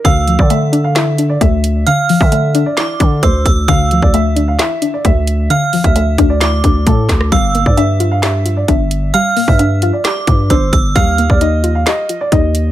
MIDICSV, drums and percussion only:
0, 0, Header, 1, 2, 480
1, 0, Start_track
1, 0, Key_signature, -1, "minor"
1, 0, Tempo, 454545
1, 50, Time_signature, 4, 2, 24, 8
1, 13431, End_track
2, 0, Start_track
2, 0, Title_t, "Drums"
2, 50, Note_on_c, 9, 36, 127
2, 51, Note_on_c, 9, 42, 72
2, 156, Note_off_c, 9, 36, 0
2, 156, Note_off_c, 9, 42, 0
2, 290, Note_on_c, 9, 42, 72
2, 396, Note_off_c, 9, 42, 0
2, 410, Note_on_c, 9, 36, 98
2, 516, Note_off_c, 9, 36, 0
2, 530, Note_on_c, 9, 42, 85
2, 636, Note_off_c, 9, 42, 0
2, 770, Note_on_c, 9, 42, 84
2, 876, Note_off_c, 9, 42, 0
2, 1010, Note_on_c, 9, 42, 84
2, 1011, Note_on_c, 9, 38, 117
2, 1020, Note_on_c, 9, 39, 93
2, 1116, Note_off_c, 9, 38, 0
2, 1116, Note_off_c, 9, 42, 0
2, 1125, Note_off_c, 9, 39, 0
2, 1250, Note_on_c, 9, 42, 79
2, 1356, Note_off_c, 9, 42, 0
2, 1490, Note_on_c, 9, 36, 100
2, 1490, Note_on_c, 9, 42, 88
2, 1596, Note_off_c, 9, 36, 0
2, 1596, Note_off_c, 9, 42, 0
2, 1730, Note_on_c, 9, 42, 90
2, 1836, Note_off_c, 9, 42, 0
2, 1970, Note_on_c, 9, 42, 73
2, 2076, Note_off_c, 9, 42, 0
2, 2210, Note_on_c, 9, 46, 78
2, 2315, Note_off_c, 9, 46, 0
2, 2329, Note_on_c, 9, 36, 93
2, 2435, Note_off_c, 9, 36, 0
2, 2450, Note_on_c, 9, 42, 85
2, 2555, Note_off_c, 9, 42, 0
2, 2689, Note_on_c, 9, 42, 82
2, 2795, Note_off_c, 9, 42, 0
2, 2929, Note_on_c, 9, 38, 121
2, 2929, Note_on_c, 9, 42, 86
2, 2938, Note_on_c, 9, 39, 93
2, 3034, Note_off_c, 9, 42, 0
2, 3035, Note_off_c, 9, 38, 0
2, 3044, Note_off_c, 9, 39, 0
2, 3169, Note_on_c, 9, 36, 97
2, 3169, Note_on_c, 9, 42, 81
2, 3274, Note_off_c, 9, 42, 0
2, 3275, Note_off_c, 9, 36, 0
2, 3409, Note_on_c, 9, 36, 101
2, 3409, Note_on_c, 9, 42, 89
2, 3515, Note_off_c, 9, 36, 0
2, 3515, Note_off_c, 9, 42, 0
2, 3648, Note_on_c, 9, 36, 102
2, 3649, Note_on_c, 9, 42, 89
2, 3754, Note_off_c, 9, 36, 0
2, 3755, Note_off_c, 9, 42, 0
2, 3889, Note_on_c, 9, 42, 71
2, 3890, Note_on_c, 9, 36, 127
2, 3995, Note_off_c, 9, 36, 0
2, 3995, Note_off_c, 9, 42, 0
2, 4130, Note_on_c, 9, 42, 72
2, 4236, Note_off_c, 9, 42, 0
2, 4249, Note_on_c, 9, 36, 98
2, 4355, Note_off_c, 9, 36, 0
2, 4370, Note_on_c, 9, 42, 86
2, 4475, Note_off_c, 9, 42, 0
2, 4609, Note_on_c, 9, 42, 82
2, 4715, Note_off_c, 9, 42, 0
2, 4849, Note_on_c, 9, 42, 88
2, 4850, Note_on_c, 9, 38, 118
2, 4858, Note_on_c, 9, 39, 95
2, 4955, Note_off_c, 9, 38, 0
2, 4955, Note_off_c, 9, 42, 0
2, 4964, Note_off_c, 9, 39, 0
2, 5089, Note_on_c, 9, 42, 80
2, 5195, Note_off_c, 9, 42, 0
2, 5329, Note_on_c, 9, 42, 87
2, 5330, Note_on_c, 9, 36, 103
2, 5435, Note_off_c, 9, 36, 0
2, 5435, Note_off_c, 9, 42, 0
2, 5570, Note_on_c, 9, 42, 88
2, 5675, Note_off_c, 9, 42, 0
2, 5810, Note_on_c, 9, 42, 72
2, 5916, Note_off_c, 9, 42, 0
2, 6050, Note_on_c, 9, 42, 43
2, 6050, Note_on_c, 9, 46, 76
2, 6156, Note_off_c, 9, 42, 0
2, 6156, Note_off_c, 9, 46, 0
2, 6169, Note_on_c, 9, 42, 72
2, 6170, Note_on_c, 9, 36, 98
2, 6275, Note_off_c, 9, 36, 0
2, 6275, Note_off_c, 9, 42, 0
2, 6290, Note_on_c, 9, 42, 83
2, 6396, Note_off_c, 9, 42, 0
2, 6530, Note_on_c, 9, 36, 101
2, 6530, Note_on_c, 9, 42, 82
2, 6635, Note_off_c, 9, 36, 0
2, 6636, Note_off_c, 9, 42, 0
2, 6770, Note_on_c, 9, 38, 118
2, 6770, Note_on_c, 9, 42, 84
2, 6779, Note_on_c, 9, 39, 95
2, 6875, Note_off_c, 9, 42, 0
2, 6876, Note_off_c, 9, 38, 0
2, 6885, Note_off_c, 9, 39, 0
2, 7010, Note_on_c, 9, 36, 98
2, 7010, Note_on_c, 9, 42, 80
2, 7116, Note_off_c, 9, 36, 0
2, 7116, Note_off_c, 9, 42, 0
2, 7250, Note_on_c, 9, 36, 100
2, 7250, Note_on_c, 9, 42, 86
2, 7356, Note_off_c, 9, 36, 0
2, 7356, Note_off_c, 9, 42, 0
2, 7489, Note_on_c, 9, 36, 103
2, 7490, Note_on_c, 9, 38, 98
2, 7490, Note_on_c, 9, 42, 90
2, 7499, Note_on_c, 9, 39, 78
2, 7595, Note_off_c, 9, 36, 0
2, 7595, Note_off_c, 9, 38, 0
2, 7596, Note_off_c, 9, 42, 0
2, 7604, Note_off_c, 9, 39, 0
2, 7609, Note_on_c, 9, 37, 96
2, 7715, Note_off_c, 9, 37, 0
2, 7730, Note_on_c, 9, 36, 125
2, 7730, Note_on_c, 9, 42, 73
2, 7836, Note_off_c, 9, 36, 0
2, 7836, Note_off_c, 9, 42, 0
2, 7970, Note_on_c, 9, 42, 71
2, 8076, Note_off_c, 9, 42, 0
2, 8089, Note_on_c, 9, 36, 96
2, 8195, Note_off_c, 9, 36, 0
2, 8210, Note_on_c, 9, 42, 85
2, 8315, Note_off_c, 9, 42, 0
2, 8450, Note_on_c, 9, 42, 83
2, 8555, Note_off_c, 9, 42, 0
2, 8689, Note_on_c, 9, 42, 85
2, 8690, Note_on_c, 9, 38, 119
2, 8698, Note_on_c, 9, 39, 95
2, 8795, Note_off_c, 9, 38, 0
2, 8795, Note_off_c, 9, 42, 0
2, 8804, Note_off_c, 9, 39, 0
2, 8930, Note_on_c, 9, 42, 80
2, 9035, Note_off_c, 9, 42, 0
2, 9169, Note_on_c, 9, 36, 99
2, 9170, Note_on_c, 9, 42, 88
2, 9275, Note_off_c, 9, 36, 0
2, 9275, Note_off_c, 9, 42, 0
2, 9409, Note_on_c, 9, 42, 91
2, 9515, Note_off_c, 9, 42, 0
2, 9650, Note_on_c, 9, 42, 73
2, 9756, Note_off_c, 9, 42, 0
2, 9890, Note_on_c, 9, 46, 74
2, 9995, Note_off_c, 9, 46, 0
2, 10009, Note_on_c, 9, 36, 98
2, 10115, Note_off_c, 9, 36, 0
2, 10130, Note_on_c, 9, 42, 85
2, 10235, Note_off_c, 9, 42, 0
2, 10370, Note_on_c, 9, 42, 81
2, 10475, Note_off_c, 9, 42, 0
2, 10609, Note_on_c, 9, 38, 116
2, 10609, Note_on_c, 9, 42, 84
2, 10618, Note_on_c, 9, 39, 91
2, 10715, Note_off_c, 9, 38, 0
2, 10715, Note_off_c, 9, 42, 0
2, 10724, Note_off_c, 9, 39, 0
2, 10849, Note_on_c, 9, 36, 98
2, 10849, Note_on_c, 9, 42, 83
2, 10954, Note_off_c, 9, 42, 0
2, 10955, Note_off_c, 9, 36, 0
2, 11089, Note_on_c, 9, 36, 99
2, 11089, Note_on_c, 9, 42, 88
2, 11195, Note_off_c, 9, 36, 0
2, 11195, Note_off_c, 9, 42, 0
2, 11328, Note_on_c, 9, 36, 104
2, 11329, Note_on_c, 9, 42, 91
2, 11434, Note_off_c, 9, 36, 0
2, 11435, Note_off_c, 9, 42, 0
2, 11570, Note_on_c, 9, 36, 126
2, 11570, Note_on_c, 9, 42, 71
2, 11675, Note_off_c, 9, 36, 0
2, 11675, Note_off_c, 9, 42, 0
2, 11810, Note_on_c, 9, 42, 70
2, 11915, Note_off_c, 9, 42, 0
2, 11929, Note_on_c, 9, 36, 100
2, 12035, Note_off_c, 9, 36, 0
2, 12050, Note_on_c, 9, 42, 84
2, 12155, Note_off_c, 9, 42, 0
2, 12289, Note_on_c, 9, 42, 83
2, 12395, Note_off_c, 9, 42, 0
2, 12529, Note_on_c, 9, 42, 85
2, 12530, Note_on_c, 9, 38, 119
2, 12539, Note_on_c, 9, 39, 93
2, 12635, Note_off_c, 9, 38, 0
2, 12635, Note_off_c, 9, 42, 0
2, 12644, Note_off_c, 9, 39, 0
2, 12770, Note_on_c, 9, 42, 80
2, 12876, Note_off_c, 9, 42, 0
2, 13010, Note_on_c, 9, 36, 101
2, 13010, Note_on_c, 9, 42, 86
2, 13115, Note_off_c, 9, 36, 0
2, 13115, Note_off_c, 9, 42, 0
2, 13249, Note_on_c, 9, 42, 87
2, 13355, Note_off_c, 9, 42, 0
2, 13431, End_track
0, 0, End_of_file